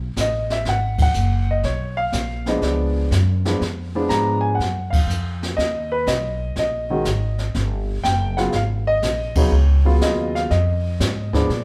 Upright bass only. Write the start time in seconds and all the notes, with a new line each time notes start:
Already playing: B1
0.16 A1
0.65 G#1
1.15 F#1
1.63 B1
2.12 A#1
2.62 C#2
3.11 F#2
3.61 F2
4.10 G#2
4.59 F#2
5.07 F2
5.58 D#2
6.07 B1
6.56 A#1
7.05 G#1
7.55 G1
8.04 F#1
8.53 G#1
9.02 A#1
9.52 C#2
10.02 D#2
10.51 F2
11.00 G#2
11.49 A#2